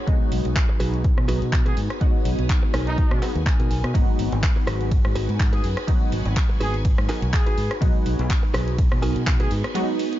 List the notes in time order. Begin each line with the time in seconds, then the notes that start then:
Already playing: B3
0.07 B1 F#3 G#3 B3 D#4 F#4 G#5, kick, closed hi-hat
0.32 B1, open hi-hat
0.45 B1, muted clean electric guitar stroke, closed hi-hat
0.56 muted clean electric guitar stroke, kick, clap, closed hi-hat
0.69 muted clean electric guitar stroke
0.80 B1 D#4 F#4 G#4 B4, open hi-hat
0.94 closed hi-hat
1.04 kick, closed hi-hat
1.18 B2, cross-stick
1.28 B1 D#4 F#4 G#4 B4, open hi-hat
1.42 B2, closed hi-hat
1.53 kick, clap
1.66 D#4 F#4 G#4 B4, closed hi-hat
1.77 G#2, open hi-hat
1.90 cross-stick, closed hi-hat
2.01 F#3 G#3 B3 D#4 F#4, kick, closed hi-hat
2.25 B1, open hi-hat
2.38 B1, muted clean electric guitar stroke, closed hi-hat
2.50 muted clean electric guitar stroke, kick, clap, closed hi-hat
2.63 muted clean electric guitar stroke
2.74 B1 D#4 F#4 G#4 A#4 C#5, cross-stick, open hi-hat
2.87 D#4, closed hi-hat
2.98 D#5, kick, closed hi-hat
3.11 B2, cross-stick
3.22 D#4 F#4 G#4 B4 F#5, clap, open hi-hat
3.35 D#2, closed hi-hat
3.46 G#5, kick, clap
3.59 B2 D#4 F#4 G#4 A#4, closed hi-hat
3.70 B1 G#5, open hi-hat
3.84 B2, cross-stick, closed hi-hat
3.94 G#1 F#3 G#3 B3 D#4 F#4 B4, kick, closed hi-hat, ride
4.19 G#1, open hi-hat
4.32 G#1, muted clean electric guitar stroke, closed hi-hat
4.43 muted clean electric guitar stroke, kick, clap, ride
4.56 muted clean electric guitar stroke
4.67 G#1 D#4 F#4 G#4 B4, cross-stick, open hi-hat
4.81 closed hi-hat
4.91 kick, closed hi-hat, ride
5.05 G#2, cross-stick
5.15 G#1 D#4 F#4 G#4 B4, open hi-hat
5.29 G#2, closed hi-hat
5.40 kick, clap, ride
5.53 D#4 F#4 G#4 B4, closed hi-hat
5.64 F#2, open hi-hat
5.77 cross-stick, closed hi-hat
5.87 F#3 G#3 B3 D#4 F#4, kick, closed hi-hat, ride
6.12 G#1, open hi-hat
6.25 G#1, muted clean electric guitar stroke, closed hi-hat
6.36 muted clean electric guitar stroke, kick, clap, closed hi-hat, ride
6.49 muted clean electric guitar stroke
6.60 G#1 D#4 F#4 G#4 B4, open hi-hat
6.74 closed hi-hat
6.85 kick, closed hi-hat, ride
6.98 G#2, cross-stick
7.09 D#4 F#4 G#4 A#4, clap, open hi-hat
7.22 B1, closed hi-hat
7.33 G#4, kick, clap, ride
7.46 D#4 F#4 G#4 B4, closed hi-hat
7.57 G#2, open hi-hat
7.71 cross-stick, closed hi-hat
7.81 B1 F#3 G#3 B3 D#4 F#4, kick, closed hi-hat, ride
8.06 B1, open hi-hat
8.19 B1, muted clean electric guitar stroke, closed hi-hat
8.29 muted clean electric guitar stroke, kick, clap, closed hi-hat, ride
8.43 muted clean electric guitar stroke
8.54 B1 D#4 F#4 G#4 B4, cross-stick, open hi-hat
8.68 closed hi-hat
8.78 kick, closed hi-hat, ride
8.92 B2, cross-stick
9.02 B1 D#4 F#4 G#4 A#4, open hi-hat
9.16 B2, closed hi-hat
9.27 kick, clap, ride
9.40 D#4 F#4 G#4 B4, closed hi-hat
9.51 G#2, open hi-hat
9.64 cross-stick, closed hi-hat
9.74 F#3 G#3 B3 D#4 F#4, closed hi-hat, ride
9.99 open hi-hat
10.12 muted clean electric guitar stroke, closed hi-hat